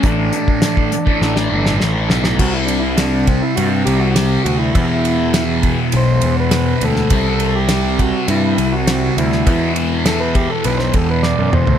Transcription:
<<
  \new Staff \with { instrumentName = "Transistor combo organ" } { \time 4/4 \key c \lydian \tempo 4 = 102 d'2. r4 | fis'16 e'16 d'16 e'16 d'8 c'16 e'16 fis'8 g'16 fis'16 g'8 fis'16 e'16~ | e'4~ e'16 r8. c''8. b'8. a'8~ | a'8. g'8. fis'8 e'8. fis'8. e'8~ |
e'8 r8 a'16 b'16 g'16 a'16 b'16 c''16 a'16 b'16 d''8 c''8 | }
  \new Staff \with { instrumentName = "Distorted electric guitar" } { \clef bass \time 4/4 \key c \lydian <a, e a>8 <a, e a>8 <a, e a>16 <e a>8 <e a>8 <e a>16 <a, e a>16 <e a>16 <a, e a>16 <e a>16 <a, e a>8 | <c g c'>1 | <e, b, e>1 | <c g c'>1 |
<e, b, e>1 | }
  \new Staff \with { instrumentName = "Picked electric bass" } { \clef bass \time 4/4 \key c \lydian a,,8 r4. a,,8 g,,8 a,,8 b,,8 | c,2 g,8 c,4 d,8 | e,2 b,,8 e,4 d,8 | c,2 g,8 c,4 d,8 |
e,2 b,,8 e,8. fis,16 e,16 d,16 | }
  \new DrumStaff \with { instrumentName = "Drums" } \drummode { \time 4/4 <hh bd>8 hh16 bd16 <hh sn>16 bd16 hh16 bd16 sn16 sn8 sn16 sn8 sn16 sn16 | <cymc bd>8 cymr8 <cymr sn>8 <bd cymr>8 cymr8 cymr8 <cymr sn>8 cymr8 | <bd cymr>8 cymr8 <cymr sn>8 <bd cymr>8 cymr8 cymr8 <cymr sn>8 cymr16 sn16 | <bd cymr>8 cymr8 <cymr sn>8 <bd cymr>8 cymr8 cymr8 <cymr sn>8 cymr16 sn16 |
<bd cymr>8 cymr8 <cymr sn>8 <bd cymr>8 cymr16 sn16 <bd cymr>8 sn8 toml16 tomfh16 | }
>>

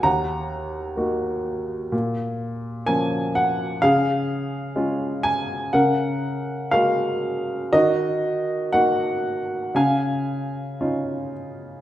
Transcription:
<<
  \new Staff \with { instrumentName = "Upright piano" } { \time 4/4 \key des \major \tempo 4 = 62 << { bes''2. aes''8 ges''8 | f''4. aes''8 ges''4 f''4 | ees''4 ges''4 aes''4. r8 | } \\ { ges''2. r4 | aes'2 bes'2 | ges'2 f''2 | } >> }
  \new Staff \with { instrumentName = "Upright piano" } { \time 4/4 \key des \major ees,4 <bes ees' ges'>4 bes,4 <f bes des'>4 | des4 <aes des' f'>4 des4 <aes bes ges'>4 | ees4 <bes ees' ges'>4 des4 <des' ees' f'>4 | }
>>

